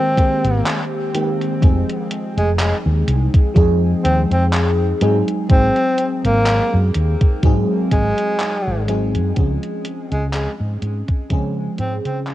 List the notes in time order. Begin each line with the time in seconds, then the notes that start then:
Already playing: D#3 G#3 A#3 C4 G4
0.17 D#3 G#3 A#3 C4 G4, kick, closed hi-hat
0.44 G#1, closed hi-hat
0.67 clap, closed hi-hat
1.14 D#3 G#3 A#3 C4 G4, closed hi-hat
1.41 closed hi-hat
1.61 F1 F3 G#3 C4 D#4 G#4, kick, closed hi-hat
1.89 closed hi-hat
2.11 closed hi-hat
2.37 F1 G#3, closed hi-hat
2.59 G#3, clap, closed hi-hat
2.86 D#2
3.08 C2, closed hi-hat
3.34 kick, closed hi-hat
3.54 F2 F3 G#3 C4 D#4 G#4, kick, closed hi-hat
4.04 D#2 C4, closed hi-hat
4.31 F2 C4, closed hi-hat
4.53 clap, closed hi-hat
5.01 G#2 F#3 G#3 C4 D#4 G#4, closed hi-hat
5.28 closed hi-hat
5.49 G#1 F#3 G#3 C4 D#4 G#4, kick, closed hi-hat
5.76 closed hi-hat
5.98 closed hi-hat
6.25 G#1 A#3, closed hi-hat
6.46 clap, closed hi-hat
6.74 F#2
6.95 D#2, closed hi-hat
7.21 kick, closed hi-hat
7.43 G#2 F#3 G#3 C4 D#4 G#4, kick, closed hi-hat
7.92 G#1 G#3, kick, closed hi-hat
8.18 closed hi-hat
8.40 clap, closed hi-hat
8.67 G#1
8.88 F#3 G#3 C4 D#4 G#4, closed hi-hat
9.15 F#2, closed hi-hat
9.36 C#2 F3 G#3 C4 C#4 G#4, kick, closed hi-hat
9.63 closed hi-hat
9.85 closed hi-hat
10.11 C#2 G#3, closed hi-hat
10.33 G#3, clap, closed hi-hat
10.60 G#2
10.82 G#2, closed hi-hat
11.08 kick, closed hi-hat
11.29 C#3 F3 G#3 C4 C#4 G#4, kick, closed hi-hat
11.78 G#2 C4, closed hi-hat
12.04 C#3 C4, closed hi-hat
12.27 clap, closed hi-hat